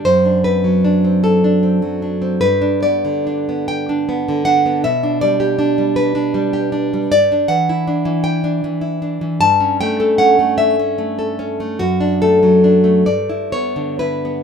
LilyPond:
\new Staff \with { instrumentName = "Nylon-string guitar" } { \time 6/8 \key g \major \tempo 4. = 51 << { c''8 b'4 a'4. | b'8 d''4 g''4 fis''8 | e''8 d''4 b'4. | \key e \dorian d''8 fis''4 g''4. |
a''8 g''8 fis''8 e''4. | fis'8 a'4 d''8 cis''8 b'8 | } \\ { fis,16 d'16 c'16 fis16 d'16 c'8 d'16 c'16 fis16 d'16 c'16 | g,16 d'16 b16 d16 d'16 b8 d'16 b16 d16 d'16 b16 | b,16 d'16 g16 g'16 d'16 g8 d'16 g16 g'16 d'16 g16 | g,16 d'16 e16 e'16 d'16 e8 d'16 e16 e'16 d'16 e16 |
g,16 cis'16 a16 a'16 cis'16 a8 cis'16 a16 a'16 cis'16 a16 | fis,16 d'16 a16 fis16 d'16 a16 g,16 e'16 b16 d16 e'16 b16 | } >> }